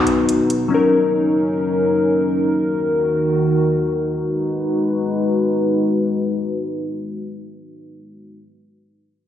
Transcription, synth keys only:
Already playing: B2 F#3 D#4 B4
0.68 F#3 C#4
0.72 D#4 A#4

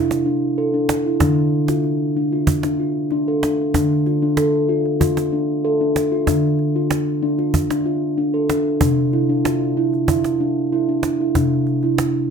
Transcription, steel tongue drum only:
Already playing: C3 E4
0.26 D4
0.58 A4
0.74 D4
1.06 E4
1.21 D3 D4
1.69 F4
2.17 D4
2.32 F4
2.64 D4
2.80 F4
3.12 D4
3.28 A4
3.43 D4
3.74 D3 D4
4.07 F4
4.22 D4
4.37 A4
4.69 F4
5.00 F4
5.33 D4
5.65 A4
5.81 D4
6.12 F4
6.27 D3 D4
6.76 F4
7.23 D4
7.38 F4
7.71 D4
7.86 F4
8.18 D4
8.34 A4
8.50 D4
8.81 C3 D4
9.13 E4
9.29 D4
9.45 F4
9.77 E4
10.09 E4
10.40 D4
10.72 E4
10.89 D4
11.20 E4
11.35 C3 D4
11.84 E4

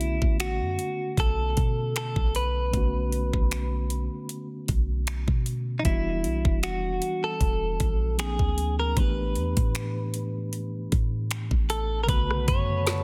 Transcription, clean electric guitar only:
Already playing: E4
0.40 F#4
1.20 A4
1.97 A4
2.36 B4
5.79 D#4
5.85 E4
6.63 F#4
7.24 A4
8.19 G#4
8.79 A#4
8.98 B4
11.70 A4
12.04 A#4
12.09 B4
12.48 C#5

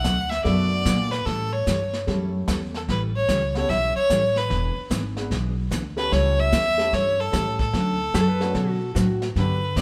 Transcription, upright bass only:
0.05 D2
0.45 F#2
0.85 A#2
1.26 A2
1.67 G2
2.07 F#2
2.48 E2
2.89 A1
3.29 C#2
3.69 B1
3.95 muted upright bass stroke
4.10 A1
4.50 E1
4.76 muted upright bass stroke
4.91 G#1
5.31 B1
5.72 D2
6.12 C#2
6.52 E2
6.93 G2
7.33 A2
7.73 D2
8.14 F#2
8.54 B2
8.95 A2
9.36 G2
9.76 F#2

